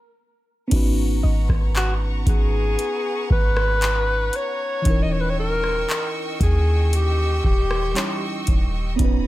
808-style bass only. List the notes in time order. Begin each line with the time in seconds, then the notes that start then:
0.72 G#1
1.24 G#1
1.49 G#1
2.26 G#1
3.30 G#1
4.86 D#1
6.40 D#2
7.44 D#1
8.48 D#1
8.99 D#1